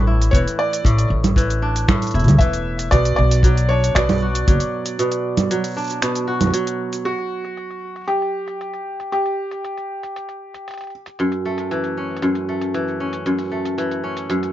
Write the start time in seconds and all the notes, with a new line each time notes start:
Already playing: A1 A2 E3 A3 D4
0.07 E4
0.22 open hi-hat, shaker
0.31 E1 E3 C#5, kick, open hi-hat, shaker
0.48 open hi-hat, shaker
0.59 D5
0.73 open hi-hat, shaker
0.84 A1 A2, kick, open hi-hat, shaker
0.99 open hi-hat, shaker
1.10 A1
1.24 open hi-hat, low conga, shaker
1.36 E3, kick, open hi-hat, shaker
1.50 open hi-hat, shaker
1.62 D4
1.76 open hi-hat, shaker
1.88 A2, finger snap, kick, low conga, shaker
2.02 open hi-hat, shaker
2.07 open hi-hat
2.11 E1 E4, open hi-hat
2.15 open hi-hat
2.19 open hi-hat
2.24 D2, open hi-hat
2.28 open hi-hat, low conga, shaker
2.39 E1 E3 E5, kick, open hi-hat, shaker
2.53 open hi-hat, shaker
2.79 open hi-hat, shaker
2.91 B1 B2 D5, kick, open hi-hat, shaker
3.05 open hi-hat, shaker
3.16 B1 D5
3.31 open hi-hat, shaker
3.43 F#3, kick, open hi-hat, shaker
3.57 open hi-hat, shaker
3.69 D4 C#5
3.84 open hi-hat, shaker
3.95 B1 B2 D5, finger snap, kick, open hi-hat, shaker
4.09 open hi-hat, low conga, shaker
4.12 shaker
4.15 shaker
4.17 shaker
4.20 F#4, shaker
4.35 open hi-hat, shaker
4.48 F#1 F#3, kick, open hi-hat, shaker
4.60 open hi-hat, shaker
4.86 open hi-hat, shaker
4.99 B2, open hi-hat, shaker
5.12 open hi-hat, shaker
5.37 open hi-hat, low conga, shaker
5.51 F#3, open hi-hat, shaker
5.64 open hi-hat, shaker
5.67 shaker
5.71 shaker
5.74 D4, shaker
5.77 shaker
5.81 shaker
5.84 shaker
5.87 shaker
5.90 shaker
6.02 B2, finger snap, open hi-hat, shaker
6.16 open hi-hat, shaker
6.28 F#4
6.41 open hi-hat, low conga, shaker
6.44 low conga
6.47 low conga
6.51 F#3, open hi-hat, low conga, shaker
6.67 open hi-hat
6.93 open hi-hat, shaker
7.05 F#4, open hi-hat
7.18 open hi-hat, shaker
7.45 open hi-hat, shaker
7.57 open hi-hat, shaker
7.71 open hi-hat, shaker
7.79 shaker
7.88 shaker
7.96 open hi-hat, shaker
7.98 shaker
8.01 shaker
8.04 shaker
8.06 G4, open hi-hat, shaker
8.09 shaker
8.22 open hi-hat, shaker
8.48 open hi-hat, shaker
8.61 open hi-hat, shaker
8.74 open hi-hat
9.00 open hi-hat, shaker
9.12 G4, open hi-hat, shaker
9.26 open hi-hat, shaker
9.51 open hi-hat, shaker
9.65 open hi-hat, shaker
9.78 open hi-hat, shaker
10.03 open hi-hat, shaker
10.16 open hi-hat, shaker
10.29 open hi-hat, shaker
10.54 open hi-hat, shaker
10.68 open hi-hat, shaker
10.71 open hi-hat
10.74 open hi-hat
10.78 open hi-hat
10.81 open hi-hat, shaker
10.84 open hi-hat
10.87 open hi-hat
10.90 open hi-hat
11.06 open hi-hat, shaker
11.19 F#2, open hi-hat, shaker
11.32 open hi-hat, shaker
11.45 A3
11.58 open hi-hat, shaker
11.71 E3, open hi-hat, shaker
11.84 open hi-hat, shaker
11.97 C#4
12.17 open hi-hat
12.22 F#2, open hi-hat, shaker
12.35 open hi-hat, shaker
12.49 A3
12.62 open hi-hat, shaker
12.74 E3, open hi-hat, shaker
12.88 shaker
13.00 C#4
13.13 open hi-hat, shaker
13.26 F#2, open hi-hat, shaker
13.39 open hi-hat, shaker
13.42 shaker
13.45 shaker
13.50 A3, shaker
13.65 open hi-hat, shaker
13.78 E3, open hi-hat, shaker
13.91 open hi-hat, shaker
14.04 C#4
14.17 open hi-hat, shaker
14.30 F#2, open hi-hat, shaker
14.43 open hi-hat, shaker